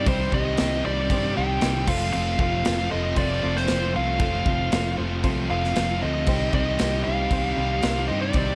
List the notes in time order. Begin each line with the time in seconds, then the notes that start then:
Already playing: G3 C4 D#4 C5
0.06 C2 C3 D#3 G3 C4 D#4 G4 C5, kick, crash
0.32 C2 C3 D#3 G3 C4 D#4 G4 C5 D#5, kick
0.57 C2 C3 D#3 G3 C4 D#4 G4 C5, snare, tambourine, crash
0.84 C2 C3 D#3 G3 C4 D#4 G4 C5 D5
1.10 G2 C3 D#3 G3 C4 D#4 G4 C5, kick, crash
1.36 C2 C3 D#3 G3 C4 D#4 G4 C5 G5
1.61 C2 C3 D#3 G3 C4 D#4 G4 C5, snare, tambourine, crash
1.87 F1 F2 C3 F3 A3 C4 F4 A4 C5 F5, kick, crash
2.13 F1 F2 C3 F3 A3 C4 F4 A4 F5, crash
2.38 F1 F2 C3 F3 A3 C4 F4 A4 C5 F5, kick
2.65 F1 F2 C3 F3 A3 C4 F4 A4 C5, snare, tambourine, crash
2.90 F1 F2 C3 F3 A3 C4 F4 A4 C5 D#5
2.94 F4
3.16 F1 F2 C3 F3 A3 C4 F4 A4 C5 D5, kick, crash
3.20 F4
3.41 F1 F2 C3 F3 A3 C4 F4 A4 C5
3.56 C5, snare
3.67 F1 F2 C3 F3 A3 C4 F4 A4 C5, snare, tambourine, crash
3.93 C2 F2 C3 F3 A3 C4 F4 A4 C5 F5
4.19 F1 F2 C3 F3 A3 C4 F4 A4 C5, kick, crash
4.45 F1 F2 C3 F3 A3 C4 F4 A4 C5, kick
4.71 F1 F2 C3 F3 A3 C4 F4 A4 C5, snare, tambourine, crash
4.96 F1 F2 C3 F3 A3 C4 F4 A4 C5
5.22 C2 F2 C3 F3 A3 C4 F4 A4 C5, kick, crash
5.49 F1 F2 C3 F3 A3 C4 F4 A4 C5 F5
5.64 snare
5.75 F1 F2 C3 F3 A3 C4 F4 A4 C5, snare, tambourine, crash
6.01 D2 F2 C3 F3 A3 C4 F4 A4 C5 D#5
6.26 C2 C3 D#3 G3 C4 D#4 G4 C5, kick, crash
6.52 C2 C3 D#3 G3 C4 D#4 G4 C5 D#5, kick
6.56 G4
6.79 C2 C3 D#3 G3 C4 D#4 G4 C5, snare, tambourine, crash
7.04 C2 C3 D#3 G3 C4 D#4 G4 C5 F5
7.31 C2 C3 D#3 G3 C4 D#4 G4 C5, kick, crash
7.57 C2 C3 D#3 G3 C4 D#4 G4 C5
7.82 C2 C3 D#3 G3 C4 D#4 G4 A#4, snare, tambourine, crash
8.08 G2 C3 D#3 G3 C4 D#4 G4 C5 D#5
8.22 D5
8.33 C2 C3 D#3 G3 C4 D#4 G4 C5, kick, crash